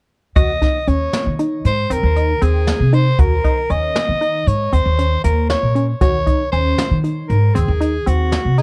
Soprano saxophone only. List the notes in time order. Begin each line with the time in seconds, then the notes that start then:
0.36 D#5
0.88 C#5
1.66 C5
1.92 A#4
2.43 G#4
2.94 C5
3.20 A#4
3.71 D#5
4.48 C#5
4.73 C5
5.24 A#4
5.49 C#5
6.01 C#5
6.52 C5
7.29 A#4
7.54 G#4
8.07 F#4
8.58 G#4